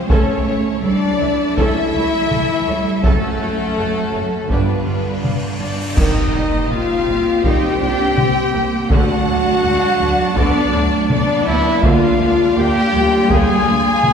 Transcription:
Already playing: string section G#3
0.09 double bass section C#2, trombone section C#3 A3, cello section A3, string section A3 E4 A4, french horn section C#4, viola section C#4 A4, trumpet A4, violin section C#5, taiko
0.47 double bass section C#2, viola section E4 C#5
0.82 double bass section C#2, cello section G3, french horn section D4, viola section A4 E5, violin section D5
1.19 double bass section C#2, cello section F#3, viola section E4 E5
1.56 double bass section C#2, trombone section C#3 A3, viola section C#4 A4, french horn section E4, trumpet A4, violin section E5, taiko
1.94 double bass section C#2, viola section E4 C#5
2.30 double bass section C#2, cello section E3, viola section A4 E5, taiko mid
2.67 double bass section C#2, cello section G3, viola section E4 C#5
3.02 double bass section F#1, trombone section C#3 F#3, cello section F#3, french horn section A3, string section C#4 F#4, viola section C#4 A4, violin section A4, trumpet A4, taiko, cymbal swell
3.40 double bass section F#1, viola section F#4 C#5
3.77 double bass section F#1, cello section F#3, viola section A4 F#5
4.14 double bass section F#1, viola section F#4 C#5
4.48 double bass section G1, trombone section D3 F3, cello section D3, string section G3 D4 F4, french horn section B3, viola section D4 B4, trumpet G4, violin section B4, taiko
4.52 string section D5
4.86 double bass section G1, viola section F4 D5
5.23 double bass section G1, viola section G4 F5, taiko mid
5.59 double bass section G1, french horn section D4, trumpet D4, viola section F4 D5, violin section D5
5.96 double bass section C2, viola section D#3 C4, trombone section G3 A#3, string section A#3 C4 G4 C5, french horn section D#4, trumpet D#4, violin section D#5, concert bass drum, taiko, crash, impact
6.34 double bass section C2, viola section G3, taiko rim
6.70 double bass section C2, viola section A#3, french horn section F4, trumpet F4, violin section F5
7.07 double bass section C2, viola section G3
7.43 double bass section C2, viola section D#3, trombone section G3 A#3, cello section D#4, french horn section G4, trumpet G4, violin section G5, taiko
7.81 double bass section C2, viola section G3, cello section D4
8.17 double bass section C2, viola section A#3, cello section C4, taiko mid
8.53 double bass section C2, viola section G3, cello section A#3
8.88 double bass section D2, viola section D3 D4, timpani D3, trombone section D3, string section F#3 D4 D5 A5, cello section A3, french horn section F#4, trumpet F#4, violin section F#5, taiko
8.92 trombone section A3
9.27 double bass section D2, viola section F#3
9.63 double bass section D2, viola section F#3, cello section G#3
9.99 double bass section D2, cello section F#3, viola section F#3
10.34 double bass section D2, viola section D3, trombone section D3 A3, cello section B3, french horn section D4, trumpet D4, violin section D5, taiko
10.73 double bass section D2, viola section F#3, cello section A3, taiko rim
11.08 double bass section D2, viola section A3, cello section B3, french horn section D4, trumpet D4, violin section D5, taiko mid
11.43 french horn section E4, trumpet E4
11.47 double bass section D2, viola section F#3, violin section E5
11.82 double bass section D2, trombone section D3 A#3, timpani D3, viola section D3, cello section A#3, string section A#3 F4, french horn section F4, trumpet F4, violin section F5, taiko
12.20 double bass section D2, viola section F3, cello section G#3
12.55 double bass section D2, cello section A#3, viola section A#3, french horn section G4, trumpet G4, violin section G5
12.93 double bass section D2, viola section F3, cello section G3
13.28 double bass section D2, trombone section D3 A#3, viola section D3, french horn section G#4, trumpet G#4, violin section G#5, taiko
13.67 double bass section D2, viola section F3
14.04 double bass section D2, cello section F3, viola section A#3, taiko mid

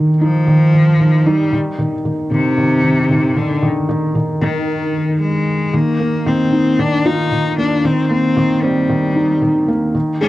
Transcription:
Already playing: felt piano D#3
0.21 cello F3, felt piano D#4
0.47 felt piano D#3
0.73 felt piano D#3
1.00 felt piano D#3
1.26 cello G3, felt piano D#4
1.53 felt piano D#3
1.79 felt piano D#3
2.05 felt piano D#3
2.31 cello C3, felt piano D#3
2.58 felt piano D#3
2.84 felt piano D#3
3.10 felt piano D#3
3.36 cello D3, felt piano D#3
3.63 felt piano D#3
3.89 felt piano D#3
4.15 felt piano D#3
4.41 cello D#3, felt piano D#3
5.21 cello G#3
5.73 felt piano D#3, cello A#3
6.00 felt piano A#3
6.26 felt piano D#3, cello C4
6.53 felt piano D#4
6.79 felt piano D#3, cello D4
7.06 cello D#4, felt piano F4
7.32 felt piano D#3
7.58 felt piano A#3, cello D4
7.84 felt piano D#3, cello C4
8.11 felt piano A#3, cello C4
8.37 felt piano D#3
8.63 cello G3, felt piano C4
8.90 felt piano D#3
9.16 felt piano D#4
9.42 felt piano D#3
9.68 felt piano A#3
9.95 felt piano D#3
10.21 felt piano G#3, cello D4

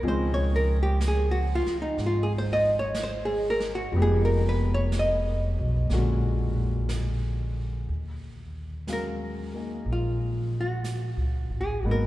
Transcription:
0.02 upright bass C#2, grand piano F3 C4 C#4 D#4 G#4, brush sweep
0.08 hollow-body jazz guitar C5
0.34 hollow-body jazz guitar C#5
0.56 hollow-body jazz guitar A#4
0.83 hollow-body jazz guitar G4
1.01 brush sweep, snare, hi-hat pedal
1.08 hollow-body jazz guitar G#4
1.31 hollow-body jazz guitar F#4
1.55 hollow-body jazz guitar F4
1.66 muted upright bass stroke, snare
1.82 hollow-body jazz guitar D#4
1.97 upright bass G#1, brush sweep, snare
2.06 hollow-body jazz guitar F4
2.23 hollow-body jazz guitar G#4
2.38 hollow-body jazz guitar C5
2.53 hollow-body jazz guitar D#5
2.79 hollow-body jazz guitar C#5
2.94 brush sweep, snare, hi-hat pedal
3.03 hollow-body jazz guitar C5
3.25 hollow-body jazz guitar G#4
3.50 hollow-body jazz guitar A#4
3.60 snare
3.75 hollow-body jazz guitar F#4
3.92 upright bass F1, grand piano F3 G#3 B3, brush sweep
3.96 grand piano D#4 G4
4.02 hollow-body jazz guitar G#4
4.25 hollow-body jazz guitar A#4
4.49 hollow-body jazz guitar B4
4.74 hollow-body jazz guitar C#5
4.92 brush sweep, snare, hi-hat pedal
4.99 hollow-body jazz guitar D#5
5.58 upright bass B1
5.90 upright bass A#1, grand piano D3 G#3 A#3 F#4, brush sweep, snare
5.94 grand piano C#4
6.89 brush sweep, snare, hi-hat pedal
7.88 upright bass D#2, brush sweep
8.87 grand piano F#3 G#3 C#4 F5, brush sweep, snare, hi-hat pedal
8.93 hollow-body jazz guitar A#4
9.53 grand piano A#3 D#4 G#4
9.86 upright bass A#1, brush sweep
9.92 hollow-body jazz guitar F4
10.61 hollow-body jazz guitar F#4
10.84 brush sweep, snare, hi-hat pedal
11.17 upright bass C#2
11.50 upright bass A1
11.61 hollow-body jazz guitar G#4
11.83 upright bass G#1, grand piano F#3 A#3 B3 D#4, brush sweep
11.91 hollow-body jazz guitar A#4

